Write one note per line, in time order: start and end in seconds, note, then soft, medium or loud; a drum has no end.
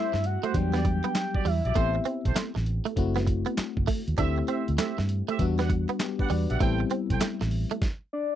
0.00 0.52 G3 medium
0.00 0.52 A3 medium
0.00 0.53 C4 medium
0.00 0.15 E4 medium
0.00 0.53 E4 medium
0.00 0.15 G4 medium
0.00 0.15 C5 medium
0.00 0.27 E5 medium
0.13 0.36 G2 medium
0.13 muted clean electric guitar stroke soft
0.13 snare medium
0.24 0.57 F#5 loud
0.24 closed hi-hat medium
0.43 0.51 A3 medium
0.43 0.57 E4 medium
0.43 0.57 G4 medium
0.43 0.57 C5 medium
0.43 closed hi-hat medium
0.54 0.99 E2 loud
0.54 1.74 F#3 medium
0.54 1.73 G3 medium
0.54 1.73 B3 medium
0.54 1.74 D4 medium
0.54 1.48 G5 loud
0.54 kick medium
0.54 closed hi-hat medium
0.74 0.82 B3 medium
0.74 0.87 F#4 medium
0.74 0.87 G4 medium
0.74 0.87 D5 medium
0.74 snare medium
0.85 muted clean electric guitar stroke soft
0.85 kick medium
0.85 closed hi-hat medium
1.04 1.12 B3 medium
1.04 closed hi-hat soft
1.15 snare loud
1.15 clap medium
1.15 closed hi-hat medium
1.34 1.48 F#4 medium
1.34 1.48 G4 medium
1.34 1.48 D5 medium
1.34 kick loud
1.45 1.60 E2 medium
1.45 1.60 G3 medium
1.45 2.37 E5 medium
1.45 open hi-hat medium
1.65 1.73 A#1 medium
1.65 1.78 F#4 medium
1.65 1.74 G4 medium
1.65 1.78 D5 medium
1.65 closed hi-hat medium
1.75 1.98 A1 loud
1.75 1.90 A3 medium
1.75 2.94 B3 medium
1.75 2.94 C4 medium
1.75 2.95 E4 medium
1.75 1.96 G4 loud
1.75 2.95 G4 medium
1.75 1.97 A4 medium
1.75 1.97 C5 loud
1.75 kick loud
1.75 closed hi-hat medium
1.95 muted clean electric guitar stroke soft
2.05 2.20 C4 medium
2.05 closed hi-hat medium
2.25 2.34 B1 loud
2.25 2.39 G4 medium
2.25 2.39 A4 medium
2.25 2.39 C5 medium
2.25 kick medium
2.25 closed hi-hat medium
2.36 2.50 A3 medium
2.36 snare loud
2.36 clap loud
2.36 clap medium
2.36 closed hi-hat medium
2.55 2.79 A1 medium
2.55 muted clean electric guitar stroke soft
2.55 snare medium
2.66 closed hi-hat medium
2.85 2.94 A3 medium
2.85 closed hi-hat medium
2.96 3.42 F#1 loud
2.96 4.15 A3 medium
2.96 4.16 C4 medium
2.96 4.16 E4 medium
2.96 4.17 F#4 medium
2.96 kick medium
2.96 closed hi-hat medium
3.16 3.24 B3 medium
3.16 snare medium
3.27 muted clean electric guitar stroke soft
3.27 kick loud
3.27 closed hi-hat medium
3.46 3.54 B3 medium
3.46 closed hi-hat soft
3.58 muted fingered electric bass stroke soft
3.58 snare loud
3.58 clap medium
3.58 closed hi-hat medium
3.77 3.85 F#1 medium
3.77 kick loud
3.87 4.02 A3 medium
3.87 kick loud
3.87 open hi-hat loud
4.08 4.16 D#2 medium
4.08 closed hi-hat medium
4.18 4.41 D2 loud
4.18 5.37 A3 medium
4.18 5.37 C4 medium
4.18 4.32 D4 medium
4.18 5.37 E4 medium
4.18 4.39 G4 loud
4.18 5.38 G4 medium
4.18 4.39 C5 medium
4.18 4.39 E5 loud
4.18 kick loud
4.18 closed hi-hat medium
4.38 muted clean electric guitar stroke soft
4.48 4.63 C4 medium
4.48 4.69 G4 medium
4.48 4.69 C5 medium
4.48 4.69 E5 medium
4.48 closed hi-hat medium
4.68 4.76 D2 medium
4.68 closed hi-hat medium
4.78 4.93 A3 medium
4.78 5.00 G4 medium
4.78 5.00 C5 medium
4.78 5.00 E5 medium
4.78 snare loud
4.78 clap loud
4.78 clap medium
4.78 closed hi-hat medium
4.98 5.21 G2 medium
4.98 muted clean electric guitar stroke soft
4.98 snare medium
5.09 closed hi-hat medium
5.28 5.36 A3 medium
5.28 5.42 G4 medium
5.28 5.42 C5 medium
5.28 5.42 E5 medium
5.28 closed hi-hat medium
5.39 5.84 E2 loud
5.39 6.58 G3 medium
5.39 5.99 B3 medium
5.39 5.99 D4 medium
5.39 6.00 F#4 medium
5.39 kick medium
5.39 closed hi-hat medium
5.59 5.67 B3 medium
5.59 5.72 G4 medium
5.59 5.72 D5 medium
5.59 5.72 F#5 medium
5.59 snare medium
5.70 muted clean electric guitar stroke soft
5.70 kick loud
5.70 closed hi-hat medium
5.89 5.97 B3 medium
5.89 closed hi-hat soft
6.00 6.19 B3 medium
6.00 6.19 G4 medium
6.00 snare loud
6.00 clap medium
6.00 closed hi-hat medium
6.19 6.30 D4 medium
6.19 6.32 G4 medium
6.19 6.30 B4 medium
6.19 6.33 D5 medium
6.19 6.33 F#5 medium
6.19 kick loud
6.30 6.45 E2 medium
6.30 6.44 G3 medium
6.30 6.49 F#4 medium
6.30 6.49 D5 medium
6.30 open hi-hat medium
6.49 6.58 A#1 medium
6.49 6.63 G4 medium
6.49 6.79 G4 medium
6.49 6.63 D5 medium
6.49 6.79 E5 medium
6.49 6.63 F#5 medium
6.49 closed hi-hat medium
6.60 6.83 A1 loud
6.60 7.79 G3 medium
6.60 6.75 A3 medium
6.60 7.79 B3 medium
6.60 7.80 C4 medium
6.60 7.80 E4 medium
6.60 6.81 A4 loud
6.60 6.81 C5 medium
6.60 6.81 G5 loud
6.60 kick loud
6.60 closed hi-hat medium
6.80 muted clean electric guitar stroke soft
6.90 7.05 C4 medium
6.90 closed hi-hat medium
7.10 7.18 B1 loud
7.10 7.23 A4 medium
7.10 7.24 C5 medium
7.10 7.24 G5 medium
7.10 kick medium
7.10 closed hi-hat medium
7.21 7.36 A3 medium
7.21 snare loud
7.21 clap loud
7.21 clap medium
7.21 closed hi-hat medium
7.41 7.64 A1 medium
7.41 muted clean electric guitar stroke soft
7.41 snare medium
7.51 open hi-hat medium
7.71 7.79 A3 medium
7.71 closed hi-hat medium
7.82 kick loud
7.82 snare medium
8.13 8.35 D5 medium